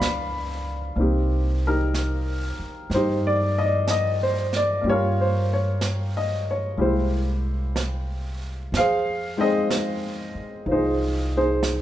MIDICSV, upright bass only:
0, 0, Header, 1, 3, 480
1, 0, Start_track
1, 0, Key_signature, -3, "minor"
1, 0, Tempo, 969305
1, 481, Time_signature, 4, 2, 24, 8
1, 4319, Key_signature, -4, "minor"
1, 5852, End_track
2, 0, Start_track
2, 0, Title_t, "Upright bass"
2, 0, Program_c, 0, 32
2, 0, Note_on_c, 0, 37, 52
2, 459, Note_off_c, 0, 37, 0
2, 476, Note_on_c, 0, 36, 67
2, 1254, Note_off_c, 0, 36, 0
2, 1435, Note_on_c, 0, 43, 75
2, 2374, Note_off_c, 0, 43, 0
2, 2396, Note_on_c, 0, 43, 71
2, 3333, Note_off_c, 0, 43, 0
2, 3355, Note_on_c, 0, 36, 61
2, 4300, Note_off_c, 0, 36, 0
2, 4319, Note_on_c, 0, 41, 62
2, 5100, Note_off_c, 0, 41, 0
2, 5279, Note_on_c, 0, 36, 69
2, 5852, Note_off_c, 0, 36, 0
2, 5852, End_track
3, 0, Start_track
3, 0, Title_t, "Muted upright bass strokes"
3, 1282, Note_on_c, 9, 29, 31
3, 1332, Note_off_c, 9, 29, 0
3, 5124, Note_on_c, 9, 29, 32
3, 5174, Note_off_c, 9, 29, 0
3, 5852, End_track
0, 0, End_of_file